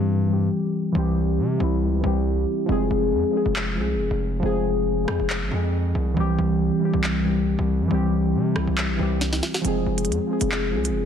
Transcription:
0.00 0.49 G2 loud
0.00 0.27 E3 loud
0.00 0.29 G3 medium
0.00 0.31 C4 loud
0.00 0.33 G4 loud
0.27 0.89 E3 medium
0.27 0.90 G3 medium
0.27 0.91 C4 medium
0.33 0.92 G4 medium
0.92 1.40 C2 loud
0.92 1.54 E3 loud
0.92 1.55 G3 loud
0.92 1.56 C4 loud
0.98 1.57 G4 loud
1.38 1.59 C3 loud
1.57 1.83 C2 loud
1.57 1.99 E3 medium
1.57 2.00 G3 medium
1.57 2.01 C4 medium
1.63 2.02 E4 medium
1.82 2.03 C#2 loud
2.01 2.45 C2 loud
2.01 2.63 E3 medium
2.01 2.64 G3 medium
2.01 2.65 C4 medium
2.07 2.66 G4 loud
2.66 2.90 F1 loud
2.66 3.28 F3 loud
2.66 3.29 G#3 loud
2.66 3.30 C4 loud
2.72 3.31 G#4 loud
2.91 3.14 F1 loud
3.12 3.23 F2 loud
3.31 3.73 F3 medium
3.31 3.74 G#3 medium
3.31 3.75 C4 medium
3.37 3.76 G#4 loud
3.46 3.79 F1 loud
3.56 clap loud
3.75 3.96 C2 loud
3.75 4.37 F3 medium
3.75 4.38 G#3 medium
3.75 4.39 C4 medium
3.81 4.40 G#4 medium
3.94 4.10 F1 loud
4.11 4.42 F1 loud
4.39 5.05 F1 loud
4.39 5.02 F3 loud
4.39 5.03 G#3 loud
4.39 5.04 C4 loud
4.45 5.05 G#4 loud
5.05 5.19 F2 loud
5.05 5.47 F3 medium
5.05 5.48 G#3 medium
5.05 5.49 C4 medium
5.05 cross-stick loud
5.11 5.50 G#4 loud
5.20 5.43 F1 loud
5.30 clap loud
5.41 5.51 G#1 loud
5.49 5.93 F2 loud
5.49 6.11 F3 medium
5.49 6.12 G#3 medium
5.49 6.13 C4 medium
5.55 6.14 G#4 medium
5.95 6.16 C2 loud
6.14 6.38 C2 loud
6.14 6.76 E3 loud
6.14 6.77 G3 medium
6.14 6.78 C4 loud
6.20 6.79 G4 loud
6.38 6.70 C2 loud
6.79 7.21 E3 medium
6.79 7.22 G3 medium
6.79 7.23 C4 medium
6.85 7.24 G4 loud
6.93 7.56 C2 loud
7.04 clap loud
7.23 7.85 E3 medium
7.23 7.86 G3 medium
7.23 7.87 C4 medium
7.29 7.88 G4 loud
7.59 7.82 C2 loud
7.80 7.90 G2 loud
7.88 8.36 C2 loud
7.88 8.50 E3 loud
7.88 8.51 G3 loud
7.88 8.52 C4 loud
7.94 8.53 G4 loud
8.34 8.55 C3 loud
8.53 8.67 C2 loud
8.53 8.95 E3 medium
8.53 8.96 G3 medium
8.53 8.97 C4 medium
8.53 cross-stick loud
8.59 8.98 E4 loud
8.67 8.91 C2 loud
8.78 clap loud
8.89 8.99 A#1 loud
8.96 9.41 C2 loud
8.96 9.59 E3 medium
8.96 9.60 G3 medium
8.96 9.61 C4 medium
9.02 9.62 G4 loud
9.21 snare medium
9.33 snare medium
9.43 snare medium
9.54 snare medium
9.61 9.85 F1 loud
9.61 10.24 F3 loud
9.61 10.25 G#3 loud
9.61 10.26 C4 loud
9.61 closed hi-hat medium
9.67 10.27 G#4 loud
9.86 10.10 F1 loud
9.98 closed hi-hat medium
10.05 10.19 F2 loud
10.05 closed hi-hat medium
10.12 closed hi-hat soft
10.27 10.69 F3 medium
10.27 10.70 G#3 medium
10.27 10.71 C4 medium
10.33 10.72 G#4 medium
10.41 10.75 F1 loud
10.41 closed hi-hat medium
10.52 clap loud
10.71 10.91 C2 loud
10.71 11.05 F3 medium
10.71 11.05 G#3 medium
10.71 11.05 C4 medium
10.77 11.05 G#4 medium
10.85 closed hi-hat medium
10.90 11.05 F1 loud

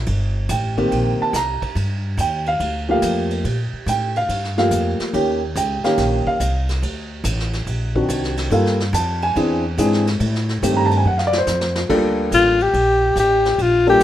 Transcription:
0.06 0.48 G1 medium
0.06 ride medium
0.49 0.90 A1 loud
0.49 1.17 G5 medium
0.49 hi-hat pedal medium
0.49 ride medium
0.77 1.31 D#3 medium
0.77 1.31 A#3 medium
0.77 1.31 C4 medium
0.77 1.31 G4 medium
0.77 kick soft
0.77 ride medium
0.91 1.18 A#1 medium
0.91 ride medium
1.19 1.34 A5 loud
1.19 muted upright bass stroke soft
1.33 1.60 C2 medium
1.33 1.74 A#5 medium
1.33 snare soft
1.33 hi-hat pedal medium
1.33 ride medium
1.62 muted upright bass stroke soft
1.62 kick medium
1.62 ride soft
1.75 2.17 G2 medium
1.75 ride medium
2.17 2.59 D#2 loud
2.17 2.47 G5 medium
2.17 hi-hat pedal medium
2.17 ride medium
2.46 2.86 F5 loud
2.46 ride soft
2.60 3.01 D2 medium
2.60 ride medium
2.89 3.42 F3 medium
2.89 3.42 A3 medium
2.89 3.42 A#3 medium
2.89 3.43 G4 medium
2.89 3.42 F5 loud
3.02 3.43 F2 medium
3.02 hi-hat pedal medium
3.02 ride medium
3.31 ride soft
3.44 3.71 A#2 medium
3.44 ride medium
3.73 muted upright bass stroke soft
3.86 4.28 A2 medium
3.86 4.16 G5 medium
3.86 hi-hat pedal medium
3.86 ride medium
4.16 4.55 F5 loud
4.16 ride soft
4.29 4.70 G2 medium
4.29 ride medium
4.44 snare soft
4.57 5.11 F3 medium
4.57 5.11 A3 medium
4.57 5.11 A#3 medium
4.57 5.11 G4 medium
4.57 5.10 F5 medium
4.57 snare soft
4.71 4.98 F2 medium
4.71 hi-hat pedal medium
4.71 ride medium
5.00 muted upright bass stroke soft
5.00 snare medium
5.00 ride medium
5.13 5.55 D#2 medium
5.13 5.39 D#3 medium
5.13 5.39 A#3 medium
5.13 5.39 C#4 medium
5.13 5.39 G4 medium
5.13 ride medium
5.55 5.82 C#2 loud
5.55 5.84 G5 medium
5.55 hi-hat pedal medium
5.55 ride medium
5.84 6.38 D#3 medium
5.84 6.38 A#3 medium
5.84 6.38 C#4 medium
5.84 6.38 G4 medium
5.84 6.24 F5 medium
5.84 muted upright bass stroke soft
5.84 snare medium
5.84 ride soft
5.98 6.24 A#1 medium
5.98 snare soft
5.98 ride medium
6.26 6.79 F5 medium
6.26 muted upright bass stroke soft
6.26 kick medium
6.40 6.81 C2 medium
6.40 hi-hat pedal medium
6.40 ride medium
6.69 snare soft
6.69 ride medium
6.82 7.23 D2 medium
6.82 ride medium
7.24 7.65 A1 loud
7.24 hi-hat pedal medium
7.24 ride medium
7.39 snare soft
7.53 snare soft
7.53 ride soft
7.67 8.08 A#1 medium
7.67 ride medium
7.95 8.49 D#3 medium
7.95 8.49 C4 medium
7.95 8.49 D4 medium
7.95 8.49 F#4 medium
7.95 kick medium
8.09 8.50 C2 medium
8.09 hi-hat pedal medium
8.09 ride medium
8.24 snare soft
8.37 snare medium
8.37 ride medium
8.50 8.92 G2 medium
8.50 8.77 G3 medium
8.50 8.77 A#3 medium
8.50 8.77 F4 medium
8.50 8.78 A4 medium
8.50 8.92 F5 medium
8.50 ride medium
8.66 snare soft
8.80 snare medium
8.93 9.34 F2 loud
8.93 9.22 A5 loud
8.93 hi-hat pedal medium
8.93 ride medium
9.22 9.62 G#5 medium
9.22 ride medium
9.36 9.77 E2 medium
9.36 9.62 E3 medium
9.36 9.62 C4 medium
9.36 9.62 D4 medium
9.36 9.62 G#4 medium
9.36 ride medium
9.78 10.19 G#2 medium
9.78 10.04 E3 medium
9.78 10.04 C4 medium
9.78 10.04 D4 medium
9.78 10.04 G#4 medium
9.78 hi-hat pedal medium
9.78 ride medium
9.93 snare soft
10.07 snare medium
10.07 ride medium
10.20 10.61 A2 medium
10.20 ride medium
10.35 snare soft
10.49 snare medium
10.62 11.04 G2 loud
10.62 11.05 D#3 medium
10.62 11.05 A3 medium
10.62 11.05 C4 medium
10.62 11.05 G4 medium
10.62 hi-hat pedal medium
10.62 ride medium
10.77 10.91 A#5 medium
10.86 10.95 A5 medium
10.91 ride medium
10.97 11.05 G#5 medium
11.05 11.46 F#2 medium
11.05 11.20 F#5 medium
11.18 11.32 F5 medium
11.18 snare medium
11.27 11.37 D5 loud
11.33 snare medium
11.38 11.79 C5 medium
11.47 11.88 F2 medium
11.47 snare medium
11.47 hi-hat pedal medium
11.61 snare medium
11.76 snare loud
11.89 12.31 D2 medium
11.89 12.54 G3 medium
11.89 12.55 A#3 medium
11.89 12.55 D4 medium
11.89 12.55 F4 medium
11.89 12.55 A4 medium
11.89 kick medium
11.89 crash medium
12.32 12.73 A1 medium
12.32 12.64 F4 medium
12.32 hi-hat pedal medium
12.32 ride medium
12.60 13.18 G4 medium
12.60 ride soft
12.74 13.15 A#1 medium
12.74 ride medium
13.16 13.57 A1 medium
13.16 13.63 G4 medium
13.16 hi-hat pedal medium
13.16 ride medium
13.45 snare medium
13.45 ride medium
13.58 14.00 A#1 medium
13.58 13.89 F4 medium
13.58 ride medium
13.87 14.00 G3 medium
13.87 14.00 A#3 medium
13.87 14.00 D4 medium
13.87 14.00 F4 medium
13.87 14.03 G4 medium
13.87 14.00 A4 medium
13.87 ride soft

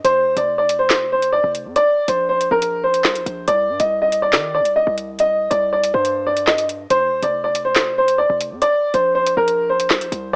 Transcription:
0.05 0.28 F1 loud
0.05 0.35 C5 loud
0.05 closed hi-hat medium
0.26 0.36 D#1 loud
0.37 1.40 F1 loud
0.37 0.55 D5 medium
0.37 closed hi-hat medium
0.58 0.76 D5 medium
0.69 closed hi-hat medium
0.79 1.10 C5 medium
0.90 snare loud
0.90 clap loud
0.90 closed hi-hat medium
1.12 1.29 C5 medium
1.22 closed hi-hat medium
1.33 1.50 D5 medium
1.44 1.67 F1 loud
1.55 closed hi-hat medium
1.65 1.76 F2 loud
1.76 2.06 D5 loud
1.76 closed hi-hat medium
2.08 2.49 A#1 loud
2.08 2.26 C5 medium
2.08 closed hi-hat medium
2.29 2.47 C5 medium
2.41 closed hi-hat medium
2.51 3.06 A#1 loud
2.51 2.82 A#4 medium
2.62 closed hi-hat medium
2.84 3.44 C5 medium
2.94 closed hi-hat medium
3.04 3.17 C2 loud
3.04 snare loud
3.04 clap medium
3.15 3.26 A#1 loud
3.15 closed hi-hat medium
3.26 3.47 A#1 loud
3.26 closed hi-hat medium
3.47 3.71 C2 loud
3.47 3.78 D5 loud
3.47 closed hi-hat medium
3.69 3.79 G2 loud
3.80 4.35 C2 loud
3.80 3.97 D#5 medium
3.80 closed hi-hat medium
4.02 4.19 D#5 medium
4.12 closed hi-hat medium
4.22 4.53 D5 medium
4.33 4.62 D#3 loud
4.33 snare loud
4.33 clap loud
4.33 closed hi-hat medium
4.55 4.72 D5 medium
4.60 4.85 C2 loud
4.65 closed hi-hat medium
4.76 4.93 D#5 medium
4.87 5.49 C2 loud
4.98 closed hi-hat medium
5.19 5.50 D#5 medium
5.19 closed hi-hat medium
5.50 5.92 C2 loud
5.50 5.68 D5 medium
5.50 closed hi-hat medium
5.72 5.90 D5 medium
5.84 closed hi-hat medium
5.94 6.87 G2 loud
5.94 6.24 C5 medium
6.05 closed hi-hat medium
6.27 6.44 D5 medium
6.37 closed hi-hat medium
6.47 6.65 D#5 medium
6.47 snare loud
6.47 clap medium
6.58 closed hi-hat medium
6.69 closed hi-hat medium
6.90 7.13 F1 loud
6.90 7.21 C5 loud
6.90 closed hi-hat medium
7.12 7.22 D#1 loud
7.22 8.26 F1 loud
7.22 7.40 D5 medium
7.22 closed hi-hat medium
7.44 7.61 D5 medium
7.55 closed hi-hat medium
7.65 7.95 C5 medium
7.76 snare loud
7.76 clap loud
7.76 closed hi-hat medium
7.98 8.15 C5 medium
8.08 closed hi-hat medium
8.18 8.36 D5 medium
8.30 8.53 F1 loud
8.41 closed hi-hat medium
8.51 8.61 F2 medium
8.62 8.92 D5 loud
8.62 closed hi-hat medium
8.94 9.35 A#1 loud
8.94 9.11 C5 medium
8.94 closed hi-hat medium
9.15 9.32 C5 medium
9.26 closed hi-hat medium
9.37 9.92 A#1 loud
9.37 9.67 A#4 medium
9.48 closed hi-hat medium
9.69 10.30 C5 medium
9.80 closed hi-hat medium
9.90 10.03 C2 loud
9.90 snare loud
9.90 clap medium
10.01 10.11 A#1 loud
10.01 closed hi-hat medium
10.12 10.33 C2 loud
10.12 closed hi-hat medium

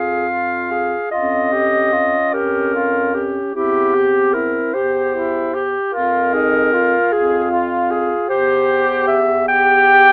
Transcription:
0.00 0.97 F2 soft
0.00 1.07 F4 soft
0.00 0.28 G#4 soft
0.00 1.11 F5 soft
0.29 0.72 F4 soft
0.71 1.11 G#4 soft
1.11 2.19 F2 soft
1.11 3.51 C#4 soft
1.11 1.54 F4 soft
1.11 2.35 D#5 medium
1.52 1.94 G4 soft
1.92 2.35 F4 soft
2.33 3.40 F2 soft
2.33 2.74 G4 soft
2.33 3.37 A#4 medium
2.74 3.16 F4 soft
3.14 3.54 G4 soft
3.54 4.60 E2 soft
3.54 4.76 C4 soft
3.54 3.96 E4 soft
3.54 4.35 G4 medium
3.94 4.36 G4 soft
4.33 4.76 E4 soft
4.33 4.75 A#4 medium
4.73 5.79 E2 soft
4.73 5.66 G4 soft
4.73 5.14 G4 soft
4.73 5.66 C5 medium
5.15 5.56 E4 soft
5.54 5.93 G4 soft
5.93 6.98 F2 soft
5.93 6.35 F4 soft
5.93 7.14 A#4 medium
6.33 6.73 D#4 soft
6.33 6.75 G#4 soft
6.73 7.14 F4 soft
6.73 8.30 F4 medium
7.12 8.15 F2 soft
7.12 7.50 G#4 soft
7.12 7.51 G#4 medium
7.51 7.92 F4 soft
7.90 8.29 G#4 soft
8.28 10.12 E2 medium
8.28 9.48 G4 medium
8.28 9.32 G4 soft
8.28 9.04 C5 medium
9.08 9.47 E5 medium
9.48 10.12 G4 soft
9.48 10.12 G5 medium

